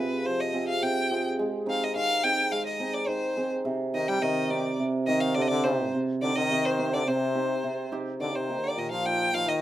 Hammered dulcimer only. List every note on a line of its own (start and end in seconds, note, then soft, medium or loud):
0.00 0.82 C3 medium
0.00 0.11 C4 medium
0.00 0.11 F4 medium
0.00 0.11 G#4 medium
0.25 0.86 F3 medium
0.53 0.67 C4 medium
0.53 0.67 F4 medium
0.53 0.67 G#4 medium
0.83 1.43 C3 medium
1.11 1.25 C4 medium
1.11 1.25 F4 medium
1.11 1.25 G#4 medium
1.39 2.00 G#3 medium
1.66 1.81 C4 medium
1.66 1.81 D#4 medium
1.66 1.81 G#4 medium
1.95 3.07 D#3 medium
2.24 2.38 C4 medium
2.24 2.38 D#4 medium
2.24 2.38 G#4 medium
2.52 3.14 G#3 medium
2.80 2.94 C4 medium
2.80 2.94 D#4 medium
2.80 2.94 G#4 medium
3.08 3.71 D#3 medium
3.37 3.51 C4 medium
3.37 3.51 D#4 medium
3.37 3.51 G#4 medium
3.65 4.21 C3 medium
3.94 4.08 C4 medium
3.94 4.08 D#4 medium
3.94 4.08 G4 medium
4.22 4.78 C3 medium
4.50 4.65 C4 medium
4.50 4.65 D#4 medium
4.50 4.65 G4 medium
4.80 5.36 C3 medium
5.08 5.22 C4 medium
5.08 5.22 D#4 medium
5.08 5.22 G4 medium
5.38 5.93 C3 medium
5.65 5.79 C4 medium
5.65 5.79 D#4 medium
5.65 5.79 G4 medium
5.95 6.49 C3 medium
6.22 6.36 C4 medium
6.22 6.36 D#4 medium
6.22 6.36 G4 medium
6.50 7.06 C3 medium
6.79 6.93 C4 medium
6.79 6.93 D#4 medium
6.79 6.93 G4 medium
7.08 7.63 C3 medium
7.35 7.49 C4 medium
7.35 7.49 D#4 medium
7.35 7.49 G4 medium
7.64 8.25 C3 medium
7.92 8.06 C4 medium
7.92 8.06 D#4 medium
7.92 8.06 G4 loud
8.20 8.82 D#3 medium
8.49 8.63 A#3 medium
8.49 8.63 D#4 medium
8.49 8.63 G4 medium
8.77 9.38 A#2 medium
9.05 9.20 A#3 medium
9.05 9.20 D#4 medium
9.05 9.20 G4 medium
9.34 9.62 D#3 medium